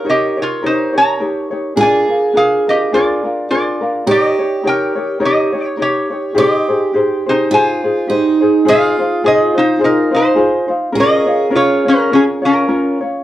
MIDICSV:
0, 0, Header, 1, 4, 480
1, 0, Start_track
1, 0, Key_signature, -4, "major"
1, 0, Tempo, 573614
1, 1490, Time_signature, 4, 2, 24, 8
1, 7254, Key_signature, -4, "minor"
1, 11077, End_track
2, 0, Start_track
2, 0, Title_t, "Resonator guitar played with a steel bar"
2, 0, Program_c, 0, 25
2, 79, Note_on_c, 0, 75, 77
2, 84, Note_on_c, 0, 67, 61
2, 321, Note_off_c, 0, 67, 0
2, 343, Note_off_c, 0, 75, 0
2, 351, Note_on_c, 0, 73, 79
2, 359, Note_on_c, 0, 65, 63
2, 535, Note_off_c, 0, 65, 0
2, 550, Note_off_c, 0, 73, 0
2, 554, Note_on_c, 0, 63, 58
2, 556, Note_on_c, 0, 72, 81
2, 795, Note_off_c, 0, 63, 0
2, 796, Note_off_c, 0, 72, 0
2, 817, Note_on_c, 0, 82, 91
2, 821, Note_on_c, 0, 73, 70
2, 1467, Note_off_c, 0, 73, 0
2, 1512, Note_on_c, 0, 80, 97
2, 1519, Note_off_c, 0, 82, 0
2, 1527, Note_on_c, 0, 74, 68
2, 1957, Note_off_c, 0, 74, 0
2, 1982, Note_on_c, 0, 68, 61
2, 1983, Note_on_c, 0, 77, 82
2, 1996, Note_off_c, 0, 80, 0
2, 2230, Note_off_c, 0, 68, 0
2, 2248, Note_off_c, 0, 77, 0
2, 2251, Note_on_c, 0, 75, 80
2, 2261, Note_on_c, 0, 67, 65
2, 2447, Note_off_c, 0, 67, 0
2, 2457, Note_off_c, 0, 75, 0
2, 2461, Note_on_c, 0, 74, 79
2, 2470, Note_on_c, 0, 65, 65
2, 2903, Note_off_c, 0, 74, 0
2, 2908, Note_off_c, 0, 65, 0
2, 2933, Note_on_c, 0, 65, 57
2, 2936, Note_on_c, 0, 74, 78
2, 3379, Note_off_c, 0, 65, 0
2, 3428, Note_off_c, 0, 74, 0
2, 3440, Note_on_c, 0, 75, 92
2, 3444, Note_on_c, 0, 67, 65
2, 3876, Note_off_c, 0, 67, 0
2, 3911, Note_on_c, 0, 79, 90
2, 3920, Note_off_c, 0, 75, 0
2, 3922, Note_on_c, 0, 70, 68
2, 4355, Note_off_c, 0, 70, 0
2, 4396, Note_off_c, 0, 79, 0
2, 4396, Note_on_c, 0, 75, 82
2, 4403, Note_on_c, 0, 67, 59
2, 4739, Note_off_c, 0, 75, 0
2, 4739, Note_on_c, 0, 73, 82
2, 4832, Note_off_c, 0, 73, 0
2, 4836, Note_off_c, 0, 67, 0
2, 4870, Note_on_c, 0, 67, 58
2, 4872, Note_on_c, 0, 73, 76
2, 5309, Note_off_c, 0, 67, 0
2, 5309, Note_off_c, 0, 73, 0
2, 5340, Note_on_c, 0, 75, 78
2, 5353, Note_on_c, 0, 67, 56
2, 5784, Note_off_c, 0, 75, 0
2, 5790, Note_off_c, 0, 67, 0
2, 6101, Note_on_c, 0, 72, 83
2, 6108, Note_on_c, 0, 63, 62
2, 6291, Note_off_c, 0, 63, 0
2, 6308, Note_off_c, 0, 72, 0
2, 6309, Note_on_c, 0, 80, 97
2, 6317, Note_on_c, 0, 72, 77
2, 7020, Note_off_c, 0, 80, 0
2, 7024, Note_off_c, 0, 72, 0
2, 7270, Note_on_c, 0, 68, 86
2, 7276, Note_on_c, 0, 77, 106
2, 7709, Note_off_c, 0, 68, 0
2, 7749, Note_on_c, 0, 68, 74
2, 7759, Note_off_c, 0, 77, 0
2, 7762, Note_on_c, 0, 75, 92
2, 7995, Note_off_c, 0, 68, 0
2, 8015, Note_on_c, 0, 63, 69
2, 8027, Note_on_c, 0, 72, 83
2, 8028, Note_off_c, 0, 75, 0
2, 8205, Note_off_c, 0, 63, 0
2, 8231, Note_off_c, 0, 72, 0
2, 8238, Note_on_c, 0, 63, 59
2, 8245, Note_on_c, 0, 70, 78
2, 8479, Note_off_c, 0, 63, 0
2, 8483, Note_off_c, 0, 70, 0
2, 8490, Note_on_c, 0, 63, 62
2, 8505, Note_on_c, 0, 72, 76
2, 8935, Note_off_c, 0, 63, 0
2, 8942, Note_off_c, 0, 72, 0
2, 9204, Note_on_c, 0, 70, 82
2, 9207, Note_on_c, 0, 75, 99
2, 9637, Note_off_c, 0, 70, 0
2, 9668, Note_on_c, 0, 65, 69
2, 9672, Note_off_c, 0, 75, 0
2, 9675, Note_on_c, 0, 73, 92
2, 9914, Note_off_c, 0, 65, 0
2, 9942, Note_on_c, 0, 61, 70
2, 9944, Note_off_c, 0, 73, 0
2, 9952, Note_on_c, 0, 70, 83
2, 10128, Note_off_c, 0, 61, 0
2, 10150, Note_on_c, 0, 61, 63
2, 10153, Note_off_c, 0, 70, 0
2, 10167, Note_on_c, 0, 68, 80
2, 10221, Note_off_c, 0, 61, 0
2, 10236, Note_off_c, 0, 68, 0
2, 10419, Note_on_c, 0, 61, 64
2, 10424, Note_on_c, 0, 70, 78
2, 10859, Note_off_c, 0, 61, 0
2, 10861, Note_off_c, 0, 70, 0
2, 11077, End_track
3, 0, Start_track
3, 0, Title_t, "Steel-string acoustic guitar"
3, 0, Program_c, 1, 25
3, 0, Note_on_c, 1, 70, 90
3, 1482, Note_on_c, 1, 68, 90
3, 1548, Note_off_c, 1, 70, 0
3, 3408, Note_on_c, 1, 67, 89
3, 3466, Note_off_c, 1, 68, 0
3, 5298, Note_off_c, 1, 67, 0
3, 5337, Note_on_c, 1, 67, 88
3, 6262, Note_off_c, 1, 67, 0
3, 6283, Note_on_c, 1, 65, 76
3, 6775, Note_on_c, 1, 63, 63
3, 6784, Note_off_c, 1, 65, 0
3, 7221, Note_off_c, 1, 63, 0
3, 7266, Note_on_c, 1, 65, 79
3, 9146, Note_off_c, 1, 65, 0
3, 9166, Note_on_c, 1, 68, 89
3, 11077, Note_off_c, 1, 68, 0
3, 11077, End_track
4, 0, Start_track
4, 0, Title_t, "Ukulele"
4, 0, Program_c, 2, 24
4, 37, Note_on_c, 2, 70, 57
4, 38, Note_on_c, 2, 63, 58
4, 44, Note_on_c, 2, 67, 55
4, 49, Note_on_c, 2, 73, 64
4, 296, Note_off_c, 2, 73, 0
4, 305, Note_off_c, 2, 67, 0
4, 307, Note_on_c, 2, 73, 45
4, 314, Note_off_c, 2, 63, 0
4, 315, Note_off_c, 2, 70, 0
4, 315, Note_on_c, 2, 67, 43
4, 324, Note_on_c, 2, 63, 39
4, 520, Note_off_c, 2, 67, 0
4, 521, Note_off_c, 2, 63, 0
4, 522, Note_off_c, 2, 73, 0
4, 523, Note_on_c, 2, 70, 68
4, 530, Note_on_c, 2, 67, 74
4, 531, Note_on_c, 2, 63, 74
4, 532, Note_on_c, 2, 73, 68
4, 768, Note_off_c, 2, 73, 0
4, 778, Note_on_c, 2, 73, 47
4, 780, Note_off_c, 2, 67, 0
4, 786, Note_off_c, 2, 63, 0
4, 790, Note_on_c, 2, 67, 47
4, 796, Note_on_c, 2, 63, 40
4, 798, Note_off_c, 2, 70, 0
4, 997, Note_off_c, 2, 63, 0
4, 997, Note_on_c, 2, 70, 51
4, 998, Note_off_c, 2, 73, 0
4, 1004, Note_off_c, 2, 67, 0
4, 1007, Note_on_c, 2, 63, 52
4, 1014, Note_on_c, 2, 67, 57
4, 1018, Note_on_c, 2, 73, 56
4, 1252, Note_off_c, 2, 73, 0
4, 1261, Note_off_c, 2, 67, 0
4, 1262, Note_on_c, 2, 73, 52
4, 1268, Note_off_c, 2, 63, 0
4, 1271, Note_on_c, 2, 67, 42
4, 1276, Note_off_c, 2, 70, 0
4, 1278, Note_on_c, 2, 63, 41
4, 1471, Note_on_c, 2, 68, 70
4, 1474, Note_off_c, 2, 63, 0
4, 1474, Note_off_c, 2, 67, 0
4, 1476, Note_off_c, 2, 73, 0
4, 1477, Note_on_c, 2, 62, 70
4, 1477, Note_on_c, 2, 65, 81
4, 1480, Note_on_c, 2, 70, 81
4, 1737, Note_off_c, 2, 70, 0
4, 1743, Note_off_c, 2, 65, 0
4, 1747, Note_on_c, 2, 70, 50
4, 1750, Note_off_c, 2, 62, 0
4, 1753, Note_off_c, 2, 68, 0
4, 1753, Note_on_c, 2, 65, 46
4, 1760, Note_on_c, 2, 62, 36
4, 1944, Note_off_c, 2, 62, 0
4, 1951, Note_on_c, 2, 68, 53
4, 1955, Note_off_c, 2, 65, 0
4, 1955, Note_on_c, 2, 62, 56
4, 1959, Note_off_c, 2, 70, 0
4, 1965, Note_on_c, 2, 65, 55
4, 1969, Note_on_c, 2, 70, 57
4, 2223, Note_off_c, 2, 70, 0
4, 2233, Note_off_c, 2, 68, 0
4, 2233, Note_on_c, 2, 70, 49
4, 2234, Note_off_c, 2, 65, 0
4, 2235, Note_off_c, 2, 62, 0
4, 2244, Note_on_c, 2, 65, 46
4, 2253, Note_on_c, 2, 62, 39
4, 2445, Note_off_c, 2, 62, 0
4, 2446, Note_off_c, 2, 65, 0
4, 2446, Note_off_c, 2, 70, 0
4, 2448, Note_on_c, 2, 68, 77
4, 2455, Note_on_c, 2, 62, 82
4, 2456, Note_on_c, 2, 65, 76
4, 2461, Note_on_c, 2, 70, 74
4, 2697, Note_off_c, 2, 70, 0
4, 2705, Note_off_c, 2, 65, 0
4, 2707, Note_on_c, 2, 70, 48
4, 2713, Note_off_c, 2, 62, 0
4, 2715, Note_on_c, 2, 65, 41
4, 2722, Note_off_c, 2, 68, 0
4, 2723, Note_on_c, 2, 62, 45
4, 2923, Note_off_c, 2, 70, 0
4, 2926, Note_off_c, 2, 62, 0
4, 2928, Note_off_c, 2, 65, 0
4, 2931, Note_on_c, 2, 68, 56
4, 2936, Note_on_c, 2, 62, 58
4, 2939, Note_on_c, 2, 65, 57
4, 2945, Note_on_c, 2, 70, 61
4, 3178, Note_off_c, 2, 70, 0
4, 3185, Note_off_c, 2, 65, 0
4, 3188, Note_on_c, 2, 70, 52
4, 3190, Note_off_c, 2, 62, 0
4, 3195, Note_on_c, 2, 65, 46
4, 3200, Note_on_c, 2, 62, 40
4, 3203, Note_off_c, 2, 68, 0
4, 3393, Note_off_c, 2, 70, 0
4, 3399, Note_off_c, 2, 62, 0
4, 3402, Note_on_c, 2, 63, 69
4, 3403, Note_on_c, 2, 70, 78
4, 3406, Note_off_c, 2, 65, 0
4, 3410, Note_on_c, 2, 67, 77
4, 3411, Note_on_c, 2, 73, 78
4, 3662, Note_off_c, 2, 73, 0
4, 3672, Note_on_c, 2, 73, 52
4, 3673, Note_off_c, 2, 67, 0
4, 3679, Note_off_c, 2, 63, 0
4, 3679, Note_off_c, 2, 70, 0
4, 3683, Note_on_c, 2, 67, 42
4, 3692, Note_on_c, 2, 63, 35
4, 3871, Note_off_c, 2, 63, 0
4, 3878, Note_on_c, 2, 70, 59
4, 3879, Note_off_c, 2, 67, 0
4, 3881, Note_on_c, 2, 63, 59
4, 3884, Note_off_c, 2, 73, 0
4, 3889, Note_on_c, 2, 67, 63
4, 3894, Note_on_c, 2, 73, 61
4, 4136, Note_off_c, 2, 73, 0
4, 4146, Note_on_c, 2, 73, 56
4, 4147, Note_off_c, 2, 67, 0
4, 4155, Note_off_c, 2, 63, 0
4, 4157, Note_off_c, 2, 70, 0
4, 4157, Note_on_c, 2, 67, 47
4, 4165, Note_on_c, 2, 63, 42
4, 4343, Note_off_c, 2, 63, 0
4, 4343, Note_off_c, 2, 67, 0
4, 4350, Note_on_c, 2, 70, 74
4, 4352, Note_off_c, 2, 73, 0
4, 4353, Note_on_c, 2, 63, 74
4, 4353, Note_on_c, 2, 67, 74
4, 4362, Note_on_c, 2, 73, 78
4, 4614, Note_off_c, 2, 73, 0
4, 4622, Note_off_c, 2, 67, 0
4, 4624, Note_on_c, 2, 73, 51
4, 4632, Note_on_c, 2, 67, 46
4, 4633, Note_off_c, 2, 70, 0
4, 4635, Note_off_c, 2, 63, 0
4, 4643, Note_on_c, 2, 63, 41
4, 4830, Note_off_c, 2, 63, 0
4, 4830, Note_on_c, 2, 70, 54
4, 4837, Note_off_c, 2, 67, 0
4, 4840, Note_off_c, 2, 73, 0
4, 4840, Note_on_c, 2, 63, 57
4, 4847, Note_on_c, 2, 67, 64
4, 4851, Note_on_c, 2, 73, 62
4, 5096, Note_off_c, 2, 73, 0
4, 5106, Note_off_c, 2, 67, 0
4, 5106, Note_on_c, 2, 73, 46
4, 5112, Note_off_c, 2, 63, 0
4, 5113, Note_off_c, 2, 70, 0
4, 5116, Note_on_c, 2, 67, 40
4, 5122, Note_on_c, 2, 63, 41
4, 5299, Note_off_c, 2, 67, 0
4, 5300, Note_off_c, 2, 63, 0
4, 5309, Note_on_c, 2, 67, 72
4, 5310, Note_on_c, 2, 63, 72
4, 5315, Note_on_c, 2, 68, 77
4, 5318, Note_off_c, 2, 73, 0
4, 5322, Note_on_c, 2, 72, 72
4, 5582, Note_off_c, 2, 72, 0
4, 5587, Note_off_c, 2, 68, 0
4, 5592, Note_on_c, 2, 72, 50
4, 5593, Note_off_c, 2, 67, 0
4, 5594, Note_off_c, 2, 63, 0
4, 5597, Note_on_c, 2, 68, 43
4, 5608, Note_on_c, 2, 63, 41
4, 5798, Note_off_c, 2, 63, 0
4, 5801, Note_off_c, 2, 68, 0
4, 5802, Note_on_c, 2, 67, 53
4, 5807, Note_off_c, 2, 72, 0
4, 5808, Note_on_c, 2, 63, 61
4, 5811, Note_on_c, 2, 68, 62
4, 5821, Note_on_c, 2, 72, 62
4, 6067, Note_off_c, 2, 72, 0
4, 6077, Note_on_c, 2, 72, 48
4, 6078, Note_off_c, 2, 68, 0
4, 6080, Note_off_c, 2, 67, 0
4, 6083, Note_off_c, 2, 63, 0
4, 6088, Note_on_c, 2, 68, 44
4, 6091, Note_on_c, 2, 63, 44
4, 6281, Note_off_c, 2, 63, 0
4, 6286, Note_off_c, 2, 72, 0
4, 6286, Note_on_c, 2, 67, 65
4, 6291, Note_off_c, 2, 68, 0
4, 6291, Note_on_c, 2, 63, 67
4, 6296, Note_on_c, 2, 72, 77
4, 6301, Note_on_c, 2, 68, 69
4, 6550, Note_off_c, 2, 72, 0
4, 6553, Note_off_c, 2, 68, 0
4, 6560, Note_on_c, 2, 72, 48
4, 6562, Note_off_c, 2, 67, 0
4, 6563, Note_on_c, 2, 68, 44
4, 6565, Note_off_c, 2, 63, 0
4, 6574, Note_on_c, 2, 63, 43
4, 6754, Note_off_c, 2, 63, 0
4, 6755, Note_on_c, 2, 67, 51
4, 6759, Note_off_c, 2, 68, 0
4, 6764, Note_on_c, 2, 63, 56
4, 6767, Note_off_c, 2, 72, 0
4, 6769, Note_on_c, 2, 68, 57
4, 6777, Note_on_c, 2, 72, 62
4, 7023, Note_off_c, 2, 72, 0
4, 7032, Note_off_c, 2, 68, 0
4, 7033, Note_on_c, 2, 72, 53
4, 7037, Note_off_c, 2, 67, 0
4, 7038, Note_off_c, 2, 63, 0
4, 7042, Note_on_c, 2, 68, 49
4, 7048, Note_on_c, 2, 63, 49
4, 7225, Note_off_c, 2, 68, 0
4, 7229, Note_off_c, 2, 63, 0
4, 7235, Note_on_c, 2, 68, 67
4, 7238, Note_off_c, 2, 72, 0
4, 7239, Note_on_c, 2, 63, 72
4, 7242, Note_on_c, 2, 65, 75
4, 7248, Note_on_c, 2, 72, 87
4, 7513, Note_off_c, 2, 72, 0
4, 7517, Note_off_c, 2, 68, 0
4, 7519, Note_off_c, 2, 63, 0
4, 7520, Note_off_c, 2, 65, 0
4, 7523, Note_on_c, 2, 72, 53
4, 7528, Note_on_c, 2, 65, 47
4, 7529, Note_on_c, 2, 63, 42
4, 7721, Note_off_c, 2, 63, 0
4, 7726, Note_off_c, 2, 65, 0
4, 7729, Note_off_c, 2, 72, 0
4, 7731, Note_on_c, 2, 68, 79
4, 7732, Note_on_c, 2, 63, 72
4, 7736, Note_on_c, 2, 65, 79
4, 7739, Note_on_c, 2, 72, 75
4, 7977, Note_off_c, 2, 72, 0
4, 7987, Note_on_c, 2, 72, 51
4, 7991, Note_off_c, 2, 65, 0
4, 7995, Note_off_c, 2, 63, 0
4, 8001, Note_on_c, 2, 65, 46
4, 8004, Note_off_c, 2, 68, 0
4, 8005, Note_on_c, 2, 63, 40
4, 8188, Note_off_c, 2, 63, 0
4, 8192, Note_on_c, 2, 68, 51
4, 8197, Note_off_c, 2, 65, 0
4, 8198, Note_on_c, 2, 63, 60
4, 8199, Note_off_c, 2, 72, 0
4, 8207, Note_on_c, 2, 65, 63
4, 8209, Note_on_c, 2, 72, 69
4, 8452, Note_off_c, 2, 72, 0
4, 8461, Note_off_c, 2, 65, 0
4, 8462, Note_on_c, 2, 72, 51
4, 8464, Note_off_c, 2, 63, 0
4, 8471, Note_on_c, 2, 65, 47
4, 8474, Note_on_c, 2, 63, 40
4, 8475, Note_off_c, 2, 68, 0
4, 8660, Note_off_c, 2, 63, 0
4, 8663, Note_on_c, 2, 68, 71
4, 8664, Note_off_c, 2, 72, 0
4, 8666, Note_off_c, 2, 65, 0
4, 8670, Note_on_c, 2, 63, 74
4, 8674, Note_on_c, 2, 72, 80
4, 8676, Note_on_c, 2, 65, 78
4, 8926, Note_off_c, 2, 72, 0
4, 8936, Note_on_c, 2, 72, 51
4, 8937, Note_off_c, 2, 65, 0
4, 8944, Note_off_c, 2, 63, 0
4, 8947, Note_on_c, 2, 65, 52
4, 8950, Note_off_c, 2, 68, 0
4, 8954, Note_on_c, 2, 63, 44
4, 9140, Note_off_c, 2, 63, 0
4, 9141, Note_on_c, 2, 70, 76
4, 9144, Note_off_c, 2, 65, 0
4, 9144, Note_on_c, 2, 61, 78
4, 9152, Note_off_c, 2, 72, 0
4, 9154, Note_on_c, 2, 65, 73
4, 9155, Note_on_c, 2, 73, 80
4, 9416, Note_off_c, 2, 73, 0
4, 9422, Note_off_c, 2, 65, 0
4, 9426, Note_on_c, 2, 73, 53
4, 9428, Note_off_c, 2, 61, 0
4, 9429, Note_off_c, 2, 70, 0
4, 9432, Note_on_c, 2, 65, 50
4, 9438, Note_on_c, 2, 61, 40
4, 9620, Note_off_c, 2, 61, 0
4, 9624, Note_on_c, 2, 70, 74
4, 9626, Note_off_c, 2, 73, 0
4, 9630, Note_off_c, 2, 65, 0
4, 9630, Note_on_c, 2, 61, 80
4, 9636, Note_on_c, 2, 73, 77
4, 9640, Note_on_c, 2, 65, 76
4, 9907, Note_off_c, 2, 73, 0
4, 9910, Note_off_c, 2, 70, 0
4, 9912, Note_off_c, 2, 65, 0
4, 9913, Note_off_c, 2, 61, 0
4, 9917, Note_on_c, 2, 73, 53
4, 9922, Note_on_c, 2, 65, 47
4, 9933, Note_on_c, 2, 61, 44
4, 10127, Note_off_c, 2, 61, 0
4, 10129, Note_off_c, 2, 73, 0
4, 10131, Note_on_c, 2, 70, 61
4, 10132, Note_off_c, 2, 65, 0
4, 10137, Note_on_c, 2, 61, 55
4, 10141, Note_on_c, 2, 65, 56
4, 10144, Note_on_c, 2, 73, 62
4, 10381, Note_off_c, 2, 73, 0
4, 10390, Note_off_c, 2, 65, 0
4, 10391, Note_on_c, 2, 73, 56
4, 10400, Note_off_c, 2, 61, 0
4, 10400, Note_on_c, 2, 65, 52
4, 10404, Note_off_c, 2, 70, 0
4, 10410, Note_on_c, 2, 61, 41
4, 10605, Note_off_c, 2, 61, 0
4, 10606, Note_off_c, 2, 73, 0
4, 10609, Note_off_c, 2, 65, 0
4, 10615, Note_on_c, 2, 61, 70
4, 10615, Note_on_c, 2, 70, 71
4, 10619, Note_on_c, 2, 65, 79
4, 10620, Note_on_c, 2, 73, 72
4, 10875, Note_off_c, 2, 73, 0
4, 10885, Note_on_c, 2, 73, 56
4, 10886, Note_off_c, 2, 61, 0
4, 10886, Note_off_c, 2, 70, 0
4, 10888, Note_off_c, 2, 65, 0
4, 10899, Note_on_c, 2, 65, 43
4, 10903, Note_on_c, 2, 61, 41
4, 11077, Note_off_c, 2, 61, 0
4, 11077, Note_off_c, 2, 65, 0
4, 11077, Note_off_c, 2, 73, 0
4, 11077, End_track
0, 0, End_of_file